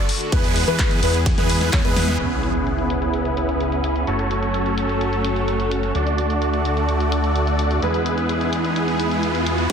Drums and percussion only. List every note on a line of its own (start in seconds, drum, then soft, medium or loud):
0.09 open hi-hat loud
0.21 closed hi-hat soft
0.32 kick loud
0.32 closed hi-hat medium
0.32 ride medium
0.44 open hi-hat medium
0.56 open hi-hat loud
0.68 closed hi-hat soft
0.79 kick loud
0.79 clap loud
0.79 closed hi-hat medium
0.79 ride medium
0.91 closed hi-hat soft
1.03 open hi-hat loud
1.14 closed hi-hat soft
1.26 kick loud
1.26 snare medium
1.26 closed hi-hat medium
1.26 ride medium
1.38 snare medium
1.38 closed hi-hat soft
1.50 open hi-hat loud
1.61 snare medium
1.61 closed hi-hat soft
1.73 kick loud
1.73 snare medium
1.73 clap loud
1.73 closed hi-hat medium
1.73 ride medium
1.85 closed hi-hat soft
1.96 snare loud
1.96 open hi-hat loud
2.08 snare medium
2.08 closed hi-hat soft
2.20 closed hi-hat medium
2.32 closed hi-hat soft
2.43 closed hi-hat medium
2.55 closed hi-hat soft
2.67 closed hi-hat medium
2.78 closed hi-hat soft
2.90 closed hi-hat medium
3.02 closed hi-hat soft
3.14 closed hi-hat medium
3.25 closed hi-hat soft
3.37 closed hi-hat medium
3.49 closed hi-hat soft
3.60 closed hi-hat medium
3.72 closed hi-hat soft
3.84 closed hi-hat medium
3.96 closed hi-hat soft
4.07 closed hi-hat medium
4.19 closed hi-hat soft
4.31 closed hi-hat medium
4.43 closed hi-hat soft
4.54 closed hi-hat medium
4.66 closed hi-hat soft
4.78 closed hi-hat medium
4.89 closed hi-hat soft
5.01 closed hi-hat medium
5.13 closed hi-hat soft
5.25 closed hi-hat medium
5.36 closed hi-hat soft
5.48 closed hi-hat medium
5.60 closed hi-hat soft
5.71 closed hi-hat medium
5.83 closed hi-hat soft
5.95 closed hi-hat medium
6.07 closed hi-hat soft
6.18 closed hi-hat medium
6.30 closed hi-hat soft
6.42 closed hi-hat medium
6.53 closed hi-hat soft
6.65 closed hi-hat medium
6.77 closed hi-hat soft
6.89 closed hi-hat medium
7.00 closed hi-hat soft
7.12 closed hi-hat medium
7.24 closed hi-hat soft
7.36 closed hi-hat medium
7.47 closed hi-hat soft
7.59 closed hi-hat medium
7.71 closed hi-hat soft
7.82 closed hi-hat medium
7.94 closed hi-hat soft
8.06 closed hi-hat medium
8.18 closed hi-hat soft
8.29 closed hi-hat medium
8.41 closed hi-hat soft
8.53 closed hi-hat medium
8.64 closed hi-hat soft
8.76 closed hi-hat medium
8.88 closed hi-hat soft
9.00 closed hi-hat medium
9.11 closed hi-hat soft
9.23 closed hi-hat medium
9.35 closed hi-hat soft
9.46 closed hi-hat medium
9.58 closed hi-hat soft